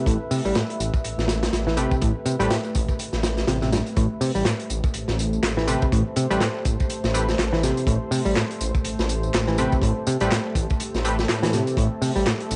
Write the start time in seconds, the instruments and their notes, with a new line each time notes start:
Already playing: ambient pad A3 G4 B4 E5
0.06 detuned saw bass A1, picked electric bass A2, kick, closed hi-hat, tambourine
0.31 picked electric bass C3, open hi-hat, tambourine
0.45 detuned saw bass A1, picked electric bass G3, tambourine
0.55 picked electric bass A2, snare, closed hi-hat, tambourine
0.70 closed hi-hat
0.80 detuned saw bass A1, closed hi-hat, tambourine
0.94 kick, tambourine
1.04 detuned saw bass A1, closed hi-hat, tambourine
1.18 detuned saw bass A1, snare, tambourine
1.28 snare, closed hi-hat, tambourine
1.43 snare, closed hi-hat, tambourine
1.52 detuned saw bass A1, snare, closed hi-hat, tambourine
1.67 picked electric bass E3, snare
1.77 picked electric bass C3, synth stab A3 C4 G4 B4, closed hi-hat, tambourine
1.91 kick, tambourine
2.02 detuned saw bass A1, picked electric bass A2, kick, closed hi-hat, tambourine
2.26 picked electric bass C3, closed hi-hat, tambourine
2.39 detuned saw bass A1, picked electric bass G3, synth stab A3 C4 G4 B4, closed hi-hat, tambourine
2.50 picked electric bass A2, snare, closed hi-hat, tambourine
2.65 tambourine
2.75 detuned saw bass A1, kick, closed hi-hat, tambourine
2.89 kick, tambourine
2.99 closed hi-hat, tambourine
3.13 detuned saw bass A1, snare, tambourine
3.23 snare, closed hi-hat, tambourine
3.37 snare, tambourine
3.48 detuned saw bass A1, picked electric bass C3, snare, closed hi-hat, tambourine
3.62 picked electric bass C3, snare, tambourine
3.72 picked electric bass G2, snare, closed hi-hat, tambourine
3.86 closed hi-hat, tambourine
3.97 detuned saw bass A1, picked electric bass A2, ambient pad A3 G4 A4 C5, kick, closed hi-hat, tambourine
4.21 picked electric bass C3, open hi-hat, tambourine
4.35 detuned saw bass A1, picked electric bass G3, tambourine
4.45 picked electric bass A2, snare, clap, closed hi-hat, tambourine
4.60 closed hi-hat
4.70 detuned saw bass A1, closed hi-hat, tambourine
4.84 kick, tambourine
4.94 detuned saw bass A1, closed hi-hat, tambourine
5.08 detuned saw bass A1, snare, tambourine
5.19 closed hi-hat, tambourine
5.33 tambourine
5.43 detuned saw bass A1, snare, clap, closed hi-hat, tambourine
5.57 picked electric bass E3, snare
5.67 picked electric bass C3, synth stab A3 C4 G4 B4, closed hi-hat, tambourine
5.82 kick, tambourine
5.92 detuned saw bass A1, picked electric bass A2, kick, closed hi-hat, tambourine
6.16 picked electric bass C3, closed hi-hat, tambourine
6.30 detuned saw bass A1, picked electric bass G3, synth stab A3 C4 G4 B4, closed hi-hat, tambourine
6.41 picked electric bass A2, snare, clap, closed hi-hat, tambourine
6.65 detuned saw bass A1, kick, closed hi-hat, tambourine
6.80 kick, tambourine
6.90 closed hi-hat, tambourine
7.04 detuned saw bass A1, snare, tambourine
7.14 synth stab A3 C4 G4 B4, closed hi-hat, tambourine
7.29 snare, tambourine
7.38 detuned saw bass A1, snare, clap, closed hi-hat, tambourine
7.53 picked electric bass E3, snare
7.63 picked electric bass C3, snare, closed hi-hat, tambourine
7.77 closed hi-hat, tambourine
7.87 detuned saw bass A1, picked electric bass A2, kick, closed hi-hat, tambourine
8.11 picked electric bass C3, open hi-hat, tambourine
8.25 detuned saw bass A1, picked electric bass G3, tambourine
8.36 picked electric bass A2, snare, clap, closed hi-hat, tambourine
8.51 closed hi-hat
8.61 detuned saw bass A1, closed hi-hat, tambourine
8.75 kick, tambourine
8.85 detuned saw bass A1, closed hi-hat, tambourine
8.99 detuned saw bass A1, snare, tambourine
9.09 closed hi-hat, tambourine
9.23 tambourine
9.34 detuned saw bass A1, snare, clap, closed hi-hat, tambourine
9.47 picked electric bass E3, snare
9.58 picked electric bass C3, synth stab A3 C4 G4 B4, closed hi-hat, tambourine
9.72 kick, tambourine
9.82 detuned saw bass A1, picked electric bass A2, kick, closed hi-hat, tambourine
10.07 picked electric bass C3, closed hi-hat, tambourine
10.20 detuned saw bass A1, picked electric bass G3, synth stab A3 C4 G4 B4, closed hi-hat, tambourine
10.31 picked electric bass A2, snare, clap, closed hi-hat, tambourine
10.55 detuned saw bass A1, kick, closed hi-hat, tambourine
10.70 kick, tambourine
10.80 closed hi-hat, tambourine
10.94 detuned saw bass A1, snare, tambourine
11.04 synth stab A3 C4 G4 B4, closed hi-hat, tambourine
11.19 snare, tambourine
11.28 detuned saw bass A2, snare, clap, closed hi-hat, tambourine
11.43 picked electric bass E3, snare, closed hi-hat, tambourine
11.53 picked electric bass C3, snare, closed hi-hat, tambourine
11.67 closed hi-hat, tambourine
11.77 detuned saw bass A1, picked electric bass A2, ambient pad E5, kick, closed hi-hat, tambourine
12.02 picked electric bass C3, open hi-hat, tambourine
12.16 detuned saw bass A1, picked electric bass G3, tambourine
12.26 picked electric bass A2, snare, clap, closed hi-hat, tambourine
12.40 closed hi-hat
12.51 detuned saw bass A1, closed hi-hat, tambourine